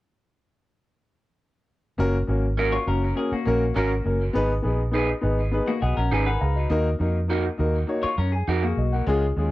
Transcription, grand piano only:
1.98 2.15 A#3 medium
1.98 2.15 C#4 medium
1.98 2.15 F#4 loud
1.98 2.16 A#4 loud
2.27 2.44 A#3 medium
2.27 2.44 C#4 medium
2.27 2.45 F#4 medium
2.27 2.45 A#4 medium
2.57 2.74 A#3 medium
2.57 2.74 C#4 medium
2.57 2.74 F#4 medium
2.57 2.75 A#4 medium
2.86 3.03 A#3 medium
2.86 3.03 C#4 medium
2.86 3.04 F#4 medium
2.86 3.04 A#4 medium
3.15 3.32 A#3 medium
3.15 3.33 C#4 medium
3.15 3.33 F#4 medium
3.15 3.33 A#4 medium
3.45 3.62 A#3 loud
3.45 3.62 C#4 medium
3.45 3.63 F#4 medium
3.45 3.63 A#4 loud
3.74 3.91 A#3 loud
3.74 3.92 C#4 medium
3.74 3.92 F#4 medium
3.74 3.92 A#4 loud
4.04 4.21 A#3 medium
4.04 4.21 C#4 medium
4.04 4.22 F#4 medium
4.04 4.22 A#4 medium
4.33 4.50 B3 loud
4.33 4.51 D#4 medium
4.33 4.51 G#4 medium
4.33 4.51 B4 loud
4.62 4.79 B3 medium
4.62 4.80 D#4 medium
4.62 4.80 G#4 medium
4.62 4.81 B4 medium
4.91 5.09 B3 medium
4.91 5.09 D#4 medium
4.91 5.10 G#4 medium
4.91 5.10 B4 medium
5.21 5.39 B3 medium
5.21 5.39 D#4 medium
5.21 5.39 G#4 medium
5.21 5.39 B4 medium
5.51 5.68 B3 medium
5.51 5.69 D#4 medium
5.51 5.69 G#4 medium
5.51 5.69 B4 medium
5.82 5.96 F#4 soft
5.82 5.96 D#5 medium
5.82 5.95 F#5 medium
5.97 6.11 A#4 medium
5.97 6.11 F#5 medium
6.12 6.26 B4 medium
6.12 6.39 G#5 medium
6.26 6.41 A#4 medium
6.26 6.40 F#5 medium
6.41 6.55 G#4 soft
6.41 6.55 F5 medium
6.41 6.68 A#5 medium
6.56 6.70 F#4 soft
6.56 6.84 D#5 medium
6.70 6.86 A#3 loud
6.70 6.87 D#4 medium
6.70 6.87 F#4 medium
6.70 6.87 A#4 loud
6.99 7.16 A#3 medium
6.99 7.16 D#4 medium
6.99 7.16 F#4 medium
6.99 7.17 A#4 medium
7.28 7.45 A#3 medium
7.28 7.45 D#4 medium
7.28 7.46 F#4 medium
7.28 7.46 A#4 medium
7.58 7.75 A#3 medium
7.58 7.75 D#4 medium
7.58 7.75 F#4 medium
7.58 7.76 A#4 medium
7.87 8.04 A#3 medium
7.87 8.05 D#4 medium
7.87 8.05 F#4 medium
7.87 8.05 C#5 medium
8.18 8.33 C#5 soft
8.18 8.32 A#5 medium
8.34 8.47 G#5 medium
8.48 8.62 A#4 medium
8.48 8.62 F#5 medium
8.63 8.77 G#4 medium
8.63 8.77 F5 medium
8.78 8.92 F#4 medium
8.78 8.92 D#5 medium
8.93 9.21 A#4 medium
8.93 9.20 F#5 medium
9.07 9.23 G#3 loud
9.07 9.23 C#4 medium
9.07 9.24 F4 loud
9.07 9.24 G#4 loud
9.36 9.51 G#3 medium
9.36 9.51 C#4 medium
9.36 9.51 F4 medium
9.36 9.51 G#4 medium

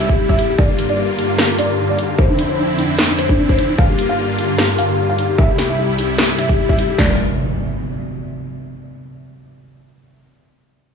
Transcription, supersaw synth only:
0.00 0.57 C2 medium
0.00 0.57 C3 medium
0.00 0.57 G3 medium
0.00 0.57 E4 medium
0.59 2.17 G2 medium
0.59 5.35 D3 medium
0.59 2.17 A#3 medium
0.59 2.17 F4 medium
2.19 3.77 F2 medium
2.19 3.77 C4 medium
2.19 3.77 E4 medium
3.79 5.37 G2 medium
3.79 5.37 A#3 medium
3.79 5.37 F4 medium
5.39 6.97 C2 medium
5.39 6.97 C3 medium
5.39 6.97 G3 medium
5.39 6.97 E4 medium
6.99 7.17 G3 medium
6.99 7.17 D4 medium
6.99 7.17 F4 medium
6.99 7.17 A#4 medium

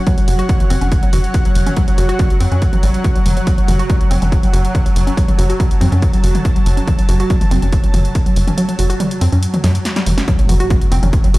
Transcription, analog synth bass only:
0.28 0.43 F#1 loud
0.70 0.78 F#1 medium
0.82 0.96 F#1 medium
1.13 1.28 F#1 loud
1.55 1.70 F#1 medium
1.98 2.13 F#1 medium
2.41 2.48 F#2 medium
2.52 2.66 F#2 medium
2.83 2.98 A1 medium
3.26 3.41 F#1 medium
3.68 3.83 F#1 loud
4.11 4.18 F#1 medium
4.22 4.36 F#1 medium
4.53 4.68 F#1 loud
4.96 5.11 F#1 medium
5.39 5.53 F#1 medium
5.81 5.89 F#2 medium
5.92 6.06 F#2 medium
6.24 6.38 F#1 medium
6.66 6.81 F#1 loud
7.09 7.24 F#1 loud
7.51 7.59 F#1 loud
7.62 7.77 F#1 medium
7.94 8.09 F#1 loud
8.36 8.51 F#1 medium
8.79 8.94 F#1 medium
9.21 9.29 F#2 medium
9.32 9.47 F#2 medium
9.64 9.79 F#2 medium
10.06 10.21 F#1 medium
10.49 10.64 F#1 loud
10.92 10.99 F#1 loud
11.03 11.17 F#1 medium
11.34 11.38 F#1 loud

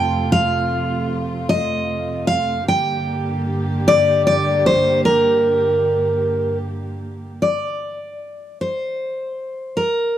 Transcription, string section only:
0.00 2.61 F2 medium
0.00 2.61 C3 medium
0.00 2.60 A3 medium
0.00 2.61 F4 medium
2.65 7.33 G2 medium
2.65 7.34 D3 medium
2.65 7.34 A#3 medium
2.65 7.34 G4 medium

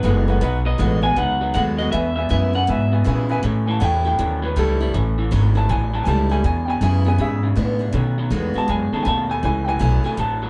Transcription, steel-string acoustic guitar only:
0.00 0.39 F#2 medium
0.00 0.27 D#3 medium
0.00 0.27 A3 medium
0.00 0.27 B3 medium
0.05 0.27 F#4 medium
0.28 0.42 B3 soft
0.28 0.41 F#4 medium
0.41 1.14 B2 loud
0.78 1.02 D#3 medium
0.78 1.02 A3 medium
0.78 1.02 B3 loud
0.78 1.01 F#4 loud
1.02 1.17 B3 medium
1.02 1.16 F#4 medium
1.16 1.90 F#2 medium
1.54 1.77 D#3 medium
1.54 1.78 A3 medium
1.54 1.78 B3 medium
1.54 1.77 F#4 medium
1.78 1.93 B3 medium
1.78 1.92 F#4 medium
1.92 2.65 E2 loud
2.29 2.53 E3 medium
2.29 2.53 G#3 medium
2.29 2.53 B3 medium
2.29 2.52 E4 medium
2.53 2.68 B3 soft
2.53 2.67 E4 medium
2.67 3.40 B2 medium
3.04 3.28 E3 medium
3.04 3.29 G#3 medium
3.04 3.29 B3 medium
3.04 3.28 E4 loud
3.29 3.43 B3 medium
3.29 3.43 E4 medium
3.43 4.16 A2 loud
3.80 4.04 E3 medium
3.80 4.04 A3 medium
3.80 4.04 C#4 loud
3.80 4.03 E4 medium
4.04 4.19 C#4 soft
4.04 4.18 E4 medium
4.19 4.91 E2 loud
4.56 4.79 E3 medium
4.56 4.79 A3 medium
4.56 4.79 C#4 medium
4.56 4.79 E4 loud
4.80 4.94 C#4 medium
4.80 4.93 E4 medium
4.94 5.66 A2 medium
5.31 5.54 E3 medium
5.31 5.55 A3 medium
5.31 5.55 C#4 loud
5.31 5.54 E4 medium
5.55 5.69 C#4 medium
5.55 5.68 E4 medium
5.69 6.41 E2 loud
6.05 6.29 E3 medium
6.05 6.29 A3 medium
6.05 6.29 C#4 medium
6.05 6.28 E4 medium
6.29 6.44 C#4 medium
6.29 6.43 E4 medium
6.44 7.16 E2 medium
6.81 7.04 E3 medium
6.81 7.04 G#3 medium
6.81 7.05 B3 loud
6.81 7.03 E4 loud
7.04 7.19 B3 soft
7.04 7.18 E4 medium
7.18 7.91 B2 medium
7.56 7.79 E3 medium
7.56 7.79 G#3 medium
7.56 7.80 B3 medium
7.56 7.78 E4 medium
7.79 7.93 B3 soft
7.79 7.93 E4 medium
7.93 8.65 B2 medium
8.30 8.54 D#3 medium
8.30 8.54 A3 medium
8.30 8.54 B3 medium
8.30 8.53 F#4 loud
8.54 8.68 B3 soft
8.54 8.67 F#4 medium
8.68 9.04 C#3 medium
9.05 9.41 B2 medium
9.43 10.15 A2 medium
9.79 10.03 E3 medium
9.79 10.03 A3 medium
9.79 10.03 C#4 loud
9.79 10.02 E4 medium
10.04 10.18 C#4 soft
10.04 10.17 E4 medium
10.17 10.50 E2 loud

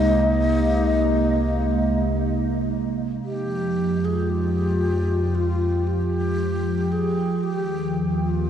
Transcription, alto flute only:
0.00 2.18 D#5 loud
3.25 4.06 G4 medium
4.05 4.31 G#4 medium
4.30 5.37 G4 medium
5.35 5.89 F4 medium
5.87 6.93 G4 medium
6.92 7.45 G#4 medium
7.43 7.97 G4 medium
8.24 8.50 F4 medium

